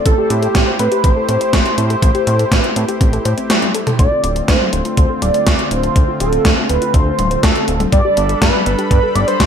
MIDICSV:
0, 0, Header, 1, 6, 480
1, 0, Start_track
1, 0, Tempo, 491803
1, 56, Time_signature, 4, 2, 24, 8
1, 9234, End_track
2, 0, Start_track
2, 0, Title_t, "Analog synth lead"
2, 0, Program_c, 0, 81
2, 58, Note_on_c, 0, 69, 100
2, 280, Note_off_c, 0, 69, 0
2, 298, Note_on_c, 0, 67, 90
2, 743, Note_off_c, 0, 67, 0
2, 776, Note_on_c, 0, 71, 91
2, 999, Note_off_c, 0, 71, 0
2, 1016, Note_on_c, 0, 72, 103
2, 2500, Note_off_c, 0, 72, 0
2, 2500, Note_on_c, 0, 71, 103
2, 3377, Note_off_c, 0, 71, 0
2, 3893, Note_on_c, 0, 74, 110
2, 4340, Note_off_c, 0, 74, 0
2, 4374, Note_on_c, 0, 72, 96
2, 4821, Note_off_c, 0, 72, 0
2, 4852, Note_on_c, 0, 72, 104
2, 5077, Note_off_c, 0, 72, 0
2, 5093, Note_on_c, 0, 74, 118
2, 5573, Note_on_c, 0, 72, 112
2, 5587, Note_off_c, 0, 74, 0
2, 6047, Note_off_c, 0, 72, 0
2, 6053, Note_on_c, 0, 69, 97
2, 6500, Note_off_c, 0, 69, 0
2, 6533, Note_on_c, 0, 71, 92
2, 6772, Note_on_c, 0, 72, 100
2, 6787, Note_off_c, 0, 71, 0
2, 7251, Note_on_c, 0, 69, 93
2, 7266, Note_off_c, 0, 72, 0
2, 7613, Note_off_c, 0, 69, 0
2, 7731, Note_on_c, 0, 74, 110
2, 8179, Note_off_c, 0, 74, 0
2, 8213, Note_on_c, 0, 71, 91
2, 8660, Note_off_c, 0, 71, 0
2, 8691, Note_on_c, 0, 71, 91
2, 8930, Note_on_c, 0, 74, 98
2, 8945, Note_off_c, 0, 71, 0
2, 9046, Note_off_c, 0, 74, 0
2, 9052, Note_on_c, 0, 72, 102
2, 9234, Note_off_c, 0, 72, 0
2, 9234, End_track
3, 0, Start_track
3, 0, Title_t, "Synth arpeggio sound"
3, 0, Program_c, 1, 84
3, 56, Note_on_c, 1, 60, 100
3, 112, Note_off_c, 1, 60, 0
3, 176, Note_on_c, 1, 67, 105
3, 270, Note_off_c, 1, 67, 0
3, 296, Note_on_c, 1, 60, 79
3, 352, Note_off_c, 1, 60, 0
3, 415, Note_on_c, 1, 69, 79
3, 510, Note_off_c, 1, 69, 0
3, 535, Note_on_c, 1, 60, 82
3, 592, Note_off_c, 1, 60, 0
3, 655, Note_on_c, 1, 72, 75
3, 769, Note_off_c, 1, 72, 0
3, 776, Note_on_c, 1, 60, 77
3, 870, Note_off_c, 1, 60, 0
3, 895, Note_on_c, 1, 67, 97
3, 990, Note_off_c, 1, 67, 0
3, 1016, Note_on_c, 1, 60, 98
3, 1110, Note_off_c, 1, 60, 0
3, 1136, Note_on_c, 1, 69, 104
3, 1230, Note_off_c, 1, 69, 0
3, 1256, Note_on_c, 1, 60, 78
3, 1312, Note_off_c, 1, 60, 0
3, 1375, Note_on_c, 1, 72, 101
3, 1489, Note_off_c, 1, 72, 0
3, 1496, Note_on_c, 1, 60, 81
3, 1552, Note_off_c, 1, 60, 0
3, 1616, Note_on_c, 1, 67, 78
3, 1672, Note_off_c, 1, 67, 0
3, 1735, Note_on_c, 1, 60, 80
3, 1830, Note_off_c, 1, 60, 0
3, 1855, Note_on_c, 1, 69, 80
3, 1949, Note_off_c, 1, 69, 0
3, 1975, Note_on_c, 1, 60, 95
3, 2032, Note_off_c, 1, 60, 0
3, 2096, Note_on_c, 1, 67, 99
3, 2190, Note_off_c, 1, 67, 0
3, 2215, Note_on_c, 1, 60, 74
3, 2272, Note_off_c, 1, 60, 0
3, 2335, Note_on_c, 1, 69, 79
3, 2430, Note_off_c, 1, 69, 0
3, 2455, Note_on_c, 1, 60, 83
3, 2512, Note_off_c, 1, 60, 0
3, 2575, Note_on_c, 1, 72, 81
3, 2689, Note_off_c, 1, 72, 0
3, 2695, Note_on_c, 1, 60, 76
3, 2790, Note_off_c, 1, 60, 0
3, 2815, Note_on_c, 1, 67, 98
3, 2910, Note_off_c, 1, 67, 0
3, 2936, Note_on_c, 1, 60, 104
3, 3030, Note_off_c, 1, 60, 0
3, 3056, Note_on_c, 1, 69, 97
3, 3150, Note_off_c, 1, 69, 0
3, 3176, Note_on_c, 1, 72, 108
3, 3270, Note_off_c, 1, 72, 0
3, 3296, Note_on_c, 1, 60, 78
3, 3410, Note_off_c, 1, 60, 0
3, 3416, Note_on_c, 1, 72, 83
3, 3472, Note_off_c, 1, 72, 0
3, 3535, Note_on_c, 1, 60, 78
3, 3630, Note_off_c, 1, 60, 0
3, 3656, Note_on_c, 1, 69, 82
3, 3750, Note_off_c, 1, 69, 0
3, 3776, Note_on_c, 1, 69, 102
3, 3832, Note_off_c, 1, 69, 0
3, 3895, Note_on_c, 1, 60, 96
3, 3952, Note_off_c, 1, 60, 0
3, 4015, Note_on_c, 1, 65, 106
3, 4110, Note_off_c, 1, 65, 0
3, 4136, Note_on_c, 1, 60, 77
3, 4192, Note_off_c, 1, 60, 0
3, 4255, Note_on_c, 1, 69, 78
3, 4350, Note_off_c, 1, 69, 0
3, 4615, Note_on_c, 1, 60, 74
3, 4710, Note_off_c, 1, 60, 0
3, 4735, Note_on_c, 1, 65, 106
3, 4830, Note_off_c, 1, 65, 0
3, 4854, Note_on_c, 1, 60, 99
3, 4949, Note_off_c, 1, 60, 0
3, 4975, Note_on_c, 1, 69, 101
3, 5070, Note_off_c, 1, 69, 0
3, 5095, Note_on_c, 1, 60, 75
3, 5152, Note_off_c, 1, 60, 0
3, 5215, Note_on_c, 1, 72, 101
3, 5329, Note_off_c, 1, 72, 0
3, 5335, Note_on_c, 1, 60, 83
3, 5392, Note_off_c, 1, 60, 0
3, 5455, Note_on_c, 1, 65, 76
3, 5512, Note_off_c, 1, 65, 0
3, 5575, Note_on_c, 1, 60, 75
3, 5670, Note_off_c, 1, 60, 0
3, 5696, Note_on_c, 1, 69, 75
3, 5790, Note_off_c, 1, 69, 0
3, 5816, Note_on_c, 1, 60, 102
3, 5872, Note_off_c, 1, 60, 0
3, 5936, Note_on_c, 1, 65, 102
3, 6030, Note_off_c, 1, 65, 0
3, 6056, Note_on_c, 1, 60, 80
3, 6112, Note_off_c, 1, 60, 0
3, 6176, Note_on_c, 1, 69, 77
3, 6270, Note_off_c, 1, 69, 0
3, 6296, Note_on_c, 1, 60, 81
3, 6352, Note_off_c, 1, 60, 0
3, 6415, Note_on_c, 1, 72, 74
3, 6529, Note_off_c, 1, 72, 0
3, 6535, Note_on_c, 1, 60, 77
3, 6630, Note_off_c, 1, 60, 0
3, 6656, Note_on_c, 1, 65, 104
3, 6750, Note_off_c, 1, 65, 0
3, 6776, Note_on_c, 1, 60, 99
3, 6870, Note_off_c, 1, 60, 0
3, 6896, Note_on_c, 1, 69, 99
3, 6990, Note_off_c, 1, 69, 0
3, 7016, Note_on_c, 1, 60, 74
3, 7072, Note_off_c, 1, 60, 0
3, 7135, Note_on_c, 1, 72, 104
3, 7249, Note_off_c, 1, 72, 0
3, 7256, Note_on_c, 1, 60, 85
3, 7312, Note_off_c, 1, 60, 0
3, 7375, Note_on_c, 1, 65, 83
3, 7432, Note_off_c, 1, 65, 0
3, 7495, Note_on_c, 1, 60, 77
3, 7590, Note_off_c, 1, 60, 0
3, 7615, Note_on_c, 1, 69, 76
3, 7710, Note_off_c, 1, 69, 0
3, 7735, Note_on_c, 1, 59, 100
3, 7792, Note_off_c, 1, 59, 0
3, 7854, Note_on_c, 1, 67, 107
3, 7949, Note_off_c, 1, 67, 0
3, 7974, Note_on_c, 1, 59, 79
3, 8031, Note_off_c, 1, 59, 0
3, 8094, Note_on_c, 1, 69, 79
3, 8189, Note_off_c, 1, 69, 0
3, 8214, Note_on_c, 1, 59, 81
3, 8271, Note_off_c, 1, 59, 0
3, 8335, Note_on_c, 1, 71, 75
3, 8449, Note_off_c, 1, 71, 0
3, 8454, Note_on_c, 1, 59, 79
3, 8549, Note_off_c, 1, 59, 0
3, 8574, Note_on_c, 1, 67, 100
3, 8669, Note_off_c, 1, 67, 0
3, 8694, Note_on_c, 1, 59, 97
3, 8789, Note_off_c, 1, 59, 0
3, 8814, Note_on_c, 1, 69, 103
3, 8909, Note_off_c, 1, 69, 0
3, 8934, Note_on_c, 1, 59, 79
3, 8991, Note_off_c, 1, 59, 0
3, 9054, Note_on_c, 1, 71, 103
3, 9168, Note_off_c, 1, 71, 0
3, 9174, Note_on_c, 1, 59, 88
3, 9231, Note_off_c, 1, 59, 0
3, 9234, End_track
4, 0, Start_track
4, 0, Title_t, "Analog synth pad"
4, 0, Program_c, 2, 89
4, 0, Note_on_c, 2, 57, 76
4, 55, Note_on_c, 2, 64, 76
4, 55, Note_on_c, 2, 72, 91
4, 56, Note_on_c, 2, 67, 76
4, 3856, Note_off_c, 2, 57, 0
4, 3857, Note_off_c, 2, 64, 0
4, 3857, Note_off_c, 2, 67, 0
4, 3857, Note_off_c, 2, 72, 0
4, 3894, Note_on_c, 2, 50, 85
4, 3894, Note_on_c, 2, 57, 78
4, 3894, Note_on_c, 2, 60, 79
4, 3894, Note_on_c, 2, 65, 91
4, 7696, Note_off_c, 2, 50, 0
4, 7696, Note_off_c, 2, 57, 0
4, 7696, Note_off_c, 2, 60, 0
4, 7696, Note_off_c, 2, 65, 0
4, 7735, Note_on_c, 2, 62, 72
4, 7735, Note_on_c, 2, 69, 79
4, 7735, Note_on_c, 2, 83, 87
4, 7736, Note_on_c, 2, 55, 82
4, 9234, Note_off_c, 2, 55, 0
4, 9234, Note_off_c, 2, 62, 0
4, 9234, Note_off_c, 2, 69, 0
4, 9234, Note_off_c, 2, 83, 0
4, 9234, End_track
5, 0, Start_track
5, 0, Title_t, "Analog synth bass"
5, 0, Program_c, 3, 38
5, 55, Note_on_c, 3, 33, 92
5, 142, Note_off_c, 3, 33, 0
5, 295, Note_on_c, 3, 45, 92
5, 468, Note_off_c, 3, 45, 0
5, 535, Note_on_c, 3, 33, 85
5, 622, Note_off_c, 3, 33, 0
5, 775, Note_on_c, 3, 45, 80
5, 862, Note_off_c, 3, 45, 0
5, 1015, Note_on_c, 3, 33, 95
5, 1102, Note_off_c, 3, 33, 0
5, 1256, Note_on_c, 3, 45, 81
5, 1342, Note_off_c, 3, 45, 0
5, 1495, Note_on_c, 3, 33, 82
5, 1582, Note_off_c, 3, 33, 0
5, 1736, Note_on_c, 3, 45, 95
5, 1909, Note_off_c, 3, 45, 0
5, 1975, Note_on_c, 3, 33, 92
5, 2062, Note_off_c, 3, 33, 0
5, 2216, Note_on_c, 3, 45, 87
5, 2389, Note_off_c, 3, 45, 0
5, 2455, Note_on_c, 3, 33, 83
5, 2542, Note_off_c, 3, 33, 0
5, 2696, Note_on_c, 3, 45, 87
5, 2782, Note_off_c, 3, 45, 0
5, 2936, Note_on_c, 3, 33, 91
5, 3108, Note_off_c, 3, 33, 0
5, 3175, Note_on_c, 3, 45, 86
5, 3262, Note_off_c, 3, 45, 0
5, 3895, Note_on_c, 3, 38, 97
5, 3982, Note_off_c, 3, 38, 0
5, 4134, Note_on_c, 3, 26, 84
5, 4308, Note_off_c, 3, 26, 0
5, 4375, Note_on_c, 3, 38, 82
5, 4462, Note_off_c, 3, 38, 0
5, 4614, Note_on_c, 3, 26, 81
5, 4701, Note_off_c, 3, 26, 0
5, 4855, Note_on_c, 3, 38, 92
5, 4942, Note_off_c, 3, 38, 0
5, 5095, Note_on_c, 3, 26, 81
5, 5182, Note_off_c, 3, 26, 0
5, 5335, Note_on_c, 3, 38, 73
5, 5422, Note_off_c, 3, 38, 0
5, 5574, Note_on_c, 3, 26, 92
5, 5748, Note_off_c, 3, 26, 0
5, 5815, Note_on_c, 3, 38, 95
5, 5901, Note_off_c, 3, 38, 0
5, 6054, Note_on_c, 3, 26, 90
5, 6228, Note_off_c, 3, 26, 0
5, 6294, Note_on_c, 3, 38, 80
5, 6381, Note_off_c, 3, 38, 0
5, 6535, Note_on_c, 3, 26, 84
5, 6621, Note_off_c, 3, 26, 0
5, 6774, Note_on_c, 3, 38, 93
5, 6948, Note_off_c, 3, 38, 0
5, 7014, Note_on_c, 3, 26, 94
5, 7188, Note_off_c, 3, 26, 0
5, 7254, Note_on_c, 3, 38, 81
5, 7341, Note_off_c, 3, 38, 0
5, 7494, Note_on_c, 3, 26, 90
5, 7668, Note_off_c, 3, 26, 0
5, 7735, Note_on_c, 3, 43, 101
5, 7821, Note_off_c, 3, 43, 0
5, 7974, Note_on_c, 3, 31, 91
5, 8148, Note_off_c, 3, 31, 0
5, 8214, Note_on_c, 3, 43, 84
5, 8301, Note_off_c, 3, 43, 0
5, 8454, Note_on_c, 3, 31, 85
5, 8541, Note_off_c, 3, 31, 0
5, 8694, Note_on_c, 3, 43, 94
5, 8781, Note_off_c, 3, 43, 0
5, 8934, Note_on_c, 3, 31, 86
5, 9021, Note_off_c, 3, 31, 0
5, 9175, Note_on_c, 3, 43, 77
5, 9234, Note_off_c, 3, 43, 0
5, 9234, End_track
6, 0, Start_track
6, 0, Title_t, "Drums"
6, 55, Note_on_c, 9, 36, 109
6, 55, Note_on_c, 9, 42, 89
6, 152, Note_off_c, 9, 42, 0
6, 153, Note_off_c, 9, 36, 0
6, 295, Note_on_c, 9, 42, 80
6, 393, Note_off_c, 9, 42, 0
6, 415, Note_on_c, 9, 42, 53
6, 513, Note_off_c, 9, 42, 0
6, 535, Note_on_c, 9, 36, 101
6, 535, Note_on_c, 9, 38, 107
6, 535, Note_on_c, 9, 42, 76
6, 633, Note_off_c, 9, 36, 0
6, 633, Note_off_c, 9, 38, 0
6, 633, Note_off_c, 9, 42, 0
6, 775, Note_on_c, 9, 42, 86
6, 872, Note_off_c, 9, 42, 0
6, 895, Note_on_c, 9, 42, 54
6, 992, Note_off_c, 9, 42, 0
6, 1015, Note_on_c, 9, 36, 115
6, 1015, Note_on_c, 9, 42, 87
6, 1112, Note_off_c, 9, 42, 0
6, 1113, Note_off_c, 9, 36, 0
6, 1255, Note_on_c, 9, 42, 80
6, 1353, Note_off_c, 9, 42, 0
6, 1375, Note_on_c, 9, 42, 56
6, 1473, Note_off_c, 9, 42, 0
6, 1495, Note_on_c, 9, 36, 104
6, 1496, Note_on_c, 9, 38, 114
6, 1496, Note_on_c, 9, 42, 83
6, 1593, Note_off_c, 9, 36, 0
6, 1594, Note_off_c, 9, 38, 0
6, 1594, Note_off_c, 9, 42, 0
6, 1616, Note_on_c, 9, 42, 37
6, 1714, Note_off_c, 9, 42, 0
6, 1736, Note_on_c, 9, 42, 79
6, 1834, Note_off_c, 9, 42, 0
6, 1856, Note_on_c, 9, 42, 55
6, 1954, Note_off_c, 9, 42, 0
6, 1975, Note_on_c, 9, 36, 118
6, 1976, Note_on_c, 9, 42, 86
6, 2073, Note_off_c, 9, 36, 0
6, 2074, Note_off_c, 9, 42, 0
6, 2096, Note_on_c, 9, 42, 37
6, 2194, Note_off_c, 9, 42, 0
6, 2216, Note_on_c, 9, 42, 83
6, 2314, Note_off_c, 9, 42, 0
6, 2337, Note_on_c, 9, 42, 57
6, 2434, Note_off_c, 9, 42, 0
6, 2455, Note_on_c, 9, 36, 104
6, 2456, Note_on_c, 9, 38, 114
6, 2456, Note_on_c, 9, 42, 81
6, 2553, Note_off_c, 9, 36, 0
6, 2554, Note_off_c, 9, 38, 0
6, 2554, Note_off_c, 9, 42, 0
6, 2577, Note_on_c, 9, 42, 40
6, 2674, Note_off_c, 9, 42, 0
6, 2696, Note_on_c, 9, 42, 82
6, 2794, Note_off_c, 9, 42, 0
6, 2816, Note_on_c, 9, 42, 58
6, 2914, Note_off_c, 9, 42, 0
6, 2935, Note_on_c, 9, 36, 109
6, 2936, Note_on_c, 9, 42, 84
6, 3033, Note_off_c, 9, 36, 0
6, 3033, Note_off_c, 9, 42, 0
6, 3056, Note_on_c, 9, 42, 37
6, 3153, Note_off_c, 9, 42, 0
6, 3176, Note_on_c, 9, 42, 84
6, 3273, Note_off_c, 9, 42, 0
6, 3295, Note_on_c, 9, 42, 58
6, 3393, Note_off_c, 9, 42, 0
6, 3415, Note_on_c, 9, 38, 121
6, 3415, Note_on_c, 9, 42, 88
6, 3415, Note_on_c, 9, 48, 61
6, 3513, Note_off_c, 9, 38, 0
6, 3513, Note_off_c, 9, 42, 0
6, 3513, Note_off_c, 9, 48, 0
6, 3535, Note_on_c, 9, 42, 38
6, 3535, Note_on_c, 9, 48, 61
6, 3633, Note_off_c, 9, 42, 0
6, 3633, Note_off_c, 9, 48, 0
6, 3655, Note_on_c, 9, 42, 79
6, 3753, Note_off_c, 9, 42, 0
6, 3776, Note_on_c, 9, 42, 55
6, 3776, Note_on_c, 9, 45, 82
6, 3873, Note_off_c, 9, 42, 0
6, 3873, Note_off_c, 9, 45, 0
6, 3895, Note_on_c, 9, 36, 115
6, 3896, Note_on_c, 9, 42, 84
6, 3993, Note_off_c, 9, 36, 0
6, 3993, Note_off_c, 9, 42, 0
6, 4135, Note_on_c, 9, 42, 80
6, 4233, Note_off_c, 9, 42, 0
6, 4255, Note_on_c, 9, 42, 54
6, 4353, Note_off_c, 9, 42, 0
6, 4375, Note_on_c, 9, 36, 100
6, 4375, Note_on_c, 9, 38, 112
6, 4375, Note_on_c, 9, 42, 81
6, 4472, Note_off_c, 9, 38, 0
6, 4472, Note_off_c, 9, 42, 0
6, 4473, Note_off_c, 9, 36, 0
6, 4495, Note_on_c, 9, 48, 60
6, 4593, Note_off_c, 9, 48, 0
6, 4615, Note_on_c, 9, 42, 81
6, 4712, Note_off_c, 9, 42, 0
6, 4735, Note_on_c, 9, 42, 55
6, 4832, Note_off_c, 9, 42, 0
6, 4854, Note_on_c, 9, 42, 84
6, 4855, Note_on_c, 9, 36, 117
6, 4952, Note_off_c, 9, 36, 0
6, 4952, Note_off_c, 9, 42, 0
6, 5095, Note_on_c, 9, 42, 83
6, 5095, Note_on_c, 9, 48, 59
6, 5193, Note_off_c, 9, 42, 0
6, 5193, Note_off_c, 9, 48, 0
6, 5215, Note_on_c, 9, 42, 55
6, 5312, Note_off_c, 9, 42, 0
6, 5335, Note_on_c, 9, 36, 110
6, 5335, Note_on_c, 9, 38, 120
6, 5335, Note_on_c, 9, 42, 84
6, 5432, Note_off_c, 9, 36, 0
6, 5432, Note_off_c, 9, 38, 0
6, 5432, Note_off_c, 9, 42, 0
6, 5455, Note_on_c, 9, 42, 38
6, 5553, Note_off_c, 9, 42, 0
6, 5574, Note_on_c, 9, 42, 79
6, 5672, Note_off_c, 9, 42, 0
6, 5695, Note_on_c, 9, 42, 52
6, 5792, Note_off_c, 9, 42, 0
6, 5815, Note_on_c, 9, 36, 124
6, 5815, Note_on_c, 9, 42, 82
6, 5912, Note_off_c, 9, 36, 0
6, 5912, Note_off_c, 9, 42, 0
6, 6054, Note_on_c, 9, 42, 82
6, 6152, Note_off_c, 9, 42, 0
6, 6174, Note_on_c, 9, 42, 51
6, 6272, Note_off_c, 9, 42, 0
6, 6294, Note_on_c, 9, 38, 122
6, 6294, Note_on_c, 9, 42, 76
6, 6295, Note_on_c, 9, 36, 107
6, 6392, Note_off_c, 9, 36, 0
6, 6392, Note_off_c, 9, 38, 0
6, 6392, Note_off_c, 9, 42, 0
6, 6534, Note_on_c, 9, 42, 83
6, 6632, Note_off_c, 9, 42, 0
6, 6654, Note_on_c, 9, 42, 56
6, 6752, Note_off_c, 9, 42, 0
6, 6774, Note_on_c, 9, 36, 121
6, 6774, Note_on_c, 9, 42, 82
6, 6872, Note_off_c, 9, 36, 0
6, 6872, Note_off_c, 9, 42, 0
6, 7014, Note_on_c, 9, 42, 80
6, 7014, Note_on_c, 9, 48, 57
6, 7112, Note_off_c, 9, 42, 0
6, 7112, Note_off_c, 9, 48, 0
6, 7135, Note_on_c, 9, 42, 55
6, 7232, Note_off_c, 9, 42, 0
6, 7254, Note_on_c, 9, 36, 115
6, 7255, Note_on_c, 9, 38, 127
6, 7255, Note_on_c, 9, 42, 82
6, 7352, Note_off_c, 9, 36, 0
6, 7352, Note_off_c, 9, 38, 0
6, 7352, Note_off_c, 9, 42, 0
6, 7375, Note_on_c, 9, 42, 38
6, 7472, Note_off_c, 9, 42, 0
6, 7494, Note_on_c, 9, 42, 77
6, 7592, Note_off_c, 9, 42, 0
6, 7614, Note_on_c, 9, 42, 53
6, 7614, Note_on_c, 9, 48, 76
6, 7712, Note_off_c, 9, 42, 0
6, 7712, Note_off_c, 9, 48, 0
6, 7734, Note_on_c, 9, 36, 122
6, 7734, Note_on_c, 9, 42, 82
6, 7832, Note_off_c, 9, 36, 0
6, 7832, Note_off_c, 9, 42, 0
6, 7974, Note_on_c, 9, 42, 80
6, 8072, Note_off_c, 9, 42, 0
6, 8094, Note_on_c, 9, 42, 51
6, 8192, Note_off_c, 9, 42, 0
6, 8214, Note_on_c, 9, 36, 110
6, 8215, Note_on_c, 9, 38, 127
6, 8215, Note_on_c, 9, 42, 77
6, 8312, Note_off_c, 9, 36, 0
6, 8313, Note_off_c, 9, 38, 0
6, 8313, Note_off_c, 9, 42, 0
6, 8335, Note_on_c, 9, 48, 57
6, 8432, Note_off_c, 9, 48, 0
6, 8455, Note_on_c, 9, 42, 78
6, 8552, Note_off_c, 9, 42, 0
6, 8575, Note_on_c, 9, 42, 53
6, 8673, Note_off_c, 9, 42, 0
6, 8695, Note_on_c, 9, 36, 121
6, 8696, Note_on_c, 9, 42, 82
6, 8792, Note_off_c, 9, 36, 0
6, 8793, Note_off_c, 9, 42, 0
6, 8935, Note_on_c, 9, 42, 75
6, 8935, Note_on_c, 9, 48, 56
6, 9033, Note_off_c, 9, 42, 0
6, 9033, Note_off_c, 9, 48, 0
6, 9056, Note_on_c, 9, 42, 52
6, 9154, Note_off_c, 9, 42, 0
6, 9174, Note_on_c, 9, 36, 114
6, 9175, Note_on_c, 9, 38, 127
6, 9175, Note_on_c, 9, 42, 79
6, 9234, Note_off_c, 9, 36, 0
6, 9234, Note_off_c, 9, 38, 0
6, 9234, Note_off_c, 9, 42, 0
6, 9234, End_track
0, 0, End_of_file